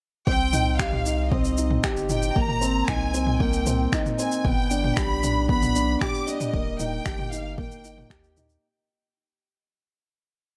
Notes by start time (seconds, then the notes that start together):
0.27 C2 C4 G5, kick
0.53 D#4, mid tom, shaker
0.78 G4 F5, finger snap, kick, shaker
0.92 mid tom
1.06 D#4, shaker
1.30 C4 D#5, kick, mid tom
1.45 shaker
1.58 D#4, shaker
1.70 mid tom
1.84 G4, finger snap, kick, shaker
1.97 G1, shaker
2.09 D#4 G5, mid tom, shaker
2.22 shaker
2.35 G#1 A#3 A#5, kick
2.49 mid tom
2.61 C4, shaker
2.88 C2 D#4 G#5, finger snap, kick, mid tom, shaker
3.14 C4, shaker
3.27 mid tom
3.40 A#3 G5, kick
3.53 shaker
3.66 C4, mid tom, shaker
3.92 D#4, finger snap, kick, shaker
4.06 mid tom, shaker
4.19 C4 G#5, shaker
4.32 shaker
4.44 G1 B3 G5, kick, mid tom
4.71 D4, shaker
4.84 mid tom
4.97 B1 G4 B5, finger snap, kick, shaker
5.24 D4, mid tom, shaker
5.49 B3 B5, kick
5.62 mid tom, shaker
5.75 D4, shaker
6.01 G4 D6, finger snap, kick, mid tom, shaker
6.14 shaker
6.27 D4 D#5, shaker
6.41 mid tom, shaker
6.54 D#1 A#3, kick
6.80 D#4 G5, mid tom, shaker
7.06 G1 G4, finger snap, kick, shaker
7.19 mid tom
7.32 D#4 F5, shaker
7.58 A#3 G5, kick, mid tom
7.72 shaker
7.84 D#4, shaker
7.98 mid tom
8.10 D#2 G4, finger snap, kick, shaker
8.24 shaker
8.37 D#4, mid tom, shaker
8.50 shaker